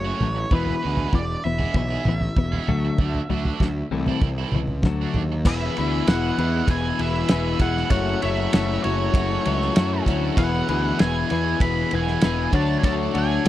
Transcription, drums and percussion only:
0.20 floor tom medium
0.20 mid tom medium
0.51 kick loud
0.51 floor tom medium
0.66 floor tom medium
0.97 floor tom medium
1.13 kick loud
1.59 floor tom medium
1.74 kick medium
1.74 floor tom medium
2.05 floor tom medium
2.05 mid tom medium
2.21 floor tom medium
2.36 kick loud
2.53 floor tom medium
2.68 floor tom medium
2.68 mid tom medium
2.98 kick medium
2.98 floor tom medium
3.14 floor tom medium
3.30 floor tom medium
3.45 floor tom medium
3.60 kick loud
3.60 snare medium
4.06 floor tom medium
4.21 kick loud
4.21 floor tom medium
4.52 floor tom medium
4.52 mid tom medium
4.67 floor tom medium
4.83 kick loud
4.83 snare medium
4.83 mid tom medium
5.14 floor tom medium
5.14 mid tom medium
5.45 kick loud
5.45 crash loud
5.77 ride medium
6.07 snare loud
6.07 ride medium
6.38 ride medium
6.68 kick loud
6.68 ride medium
6.99 ride medium
7.28 snare loud
7.28 ride loud
7.59 kick medium
7.59 ride medium
7.77 snare soft
7.90 kick loud
7.90 ride loud
8.22 ride medium
8.53 snare loud
8.53 ride loud
8.84 ride medium
9.14 kick loud
9.14 ride loud
9.45 ride medium
9.62 snare soft
9.76 snare loud
9.76 ride loud
10.06 kick medium
10.06 ride medium
10.37 kick loud
10.37 ride medium
10.69 ride medium
10.99 snare loud
10.99 ride medium
11.30 ride medium
11.60 kick loud
11.60 ride medium
11.91 ride medium
12.07 snare soft
12.21 snare loud
12.21 ride loud
12.53 kick medium
12.53 ride medium
12.83 kick loud
12.83 ride medium
13.15 ride medium
13.45 ride loud

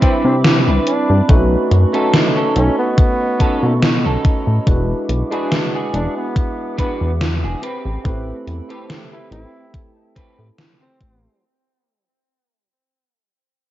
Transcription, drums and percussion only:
0.02 kick medium
0.02 closed hi-hat medium
0.44 snare loud
0.44 closed hi-hat medium
0.87 closed hi-hat medium
1.29 kick loud
1.29 closed hi-hat medium
1.71 closed hi-hat medium
1.94 closed hi-hat soft
2.13 snare loud
2.13 closed hi-hat medium
2.56 closed hi-hat medium
2.98 kick loud
2.98 closed hi-hat medium
3.40 kick medium
3.40 closed hi-hat medium
3.83 snare loud
3.83 closed hi-hat medium
4.25 kick loud
4.25 closed hi-hat medium
4.67 kick loud
4.67 closed hi-hat medium
5.09 closed hi-hat medium
5.32 closed hi-hat soft
5.52 snare loud
5.52 closed hi-hat medium
5.94 closed hi-hat medium
6.36 kick loud
6.36 closed hi-hat medium
6.78 kick medium
6.78 closed hi-hat medium
7.21 snare loud
7.21 closed hi-hat medium
7.63 closed hi-hat medium
8.05 kick loud
8.05 closed hi-hat medium
8.47 closed hi-hat medium
8.70 closed hi-hat soft
8.90 snare loud
8.90 closed hi-hat medium
9.32 closed hi-hat medium
9.74 kick loud
9.74 closed hi-hat medium
10.16 kick medium
10.16 closed hi-hat medium
10.59 snare loud
10.59 closed hi-hat medium
11.01 kick loud
11.01 closed hi-hat medium

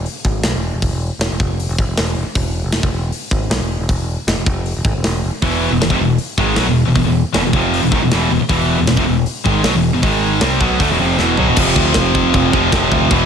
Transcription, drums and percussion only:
0.06 open hi-hat medium
0.25 kick loud
0.43 snare loud
0.43 open hi-hat medium
0.82 kick medium
0.82 open hi-hat soft
1.21 snare loud
1.21 open hi-hat soft
1.40 kick loud
1.60 open hi-hat medium
1.78 kick loud
1.97 snare loud
1.97 open hi-hat medium
2.35 kick loud
2.35 open hi-hat medium
2.72 snare loud
2.72 open hi-hat medium
2.83 kick medium
3.12 open hi-hat medium
3.31 kick loud
3.51 snare loud
3.51 open hi-hat medium
3.89 kick medium
3.89 open hi-hat medium
4.28 snare loud
4.28 open hi-hat soft
4.46 kick loud
4.66 open hi-hat medium
4.85 kick loud
5.04 snare loud
5.04 open hi-hat medium
5.42 kick loud
5.42 open hi-hat medium
5.82 snare loud
5.82 open hi-hat medium
5.90 kick medium
6.18 open hi-hat medium
6.38 kick loud
6.56 snare loud
6.56 open hi-hat medium
6.95 kick medium
6.95 open hi-hat medium
7.34 snare loud
7.34 open hi-hat medium
7.53 kick loud
7.74 open hi-hat medium
7.92 kick loud
8.11 snare loud
8.11 open hi-hat medium
8.49 kick loud
8.49 open hi-hat medium
8.87 snare loud
8.87 open hi-hat medium
8.97 kick loud
9.26 open hi-hat medium
9.46 kick loud
9.64 snare loud
9.64 open hi-hat medium
10.03 kick loud
10.03 open hi-hat medium
10.41 snare loud
10.41 open hi-hat medium
10.61 kick loud
10.80 kick loud
10.80 open hi-hat medium
11.19 snare medium
11.37 floor tom medium
11.56 kick loud
11.56 crash loud
11.56 china medium
11.76 kick medium
11.94 kick loud
11.94 snare loud
11.94 china medium
12.15 kick medium
12.34 kick loud
12.34 china medium
12.53 kick medium
12.72 kick loud
12.72 snare loud
12.72 china medium
12.92 kick medium
13.11 kick loud
13.11 china medium

